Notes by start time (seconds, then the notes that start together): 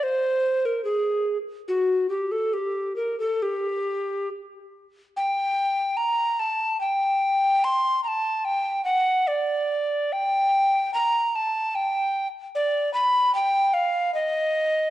0.03 C5
0.65 A#4
0.85 G#4
1.68 F#4
2.09 G4
2.32 A4
2.53 G4
2.96 A#4
3.20 A4
3.42 G4
5.17 G5
5.97 A#5
6.39 A5
6.81 G5
7.64 C6
8.04 A5 A#5
8.45 G5
8.85 F#5
9.27 D5
10.13 G5
10.94 A#5
11.36 A5
11.75 G5
12.55 D5
12.94 B5
13.35 G5
13.74 F5
14.14 D#5